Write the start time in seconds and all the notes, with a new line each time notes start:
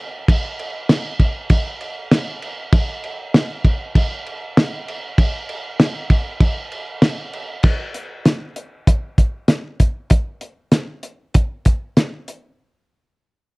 0.28 kick, crash
0.59 crash
0.89 snare, crash
1.19 kick, crash
1.50 kick, crash
1.81 crash
2.11 snare, crash
2.42 crash
2.72 kick, crash
3.04 crash
3.34 snare, crash
3.65 kick, crash
3.95 kick, crash
4.26 crash
4.57 snare, crash
4.88 crash
5.18 kick, crash
5.49 crash
5.80 snare, crash
6.10 kick, crash
6.40 kick, crash
6.72 crash
7.02 snare, crash
7.33 crash
7.63 kick, crash
7.94 closed hi-hat
8.25 snare, closed hi-hat
8.56 closed hi-hat
8.87 kick, closed hi-hat
9.18 kick, closed hi-hat
9.48 snare, closed hi-hat
9.80 kick, closed hi-hat
10.10 kick, closed hi-hat
10.41 closed hi-hat
10.72 snare, closed hi-hat
11.03 closed hi-hat
11.34 kick, closed hi-hat
11.65 kick, closed hi-hat
11.97 snare, closed hi-hat
12.28 closed hi-hat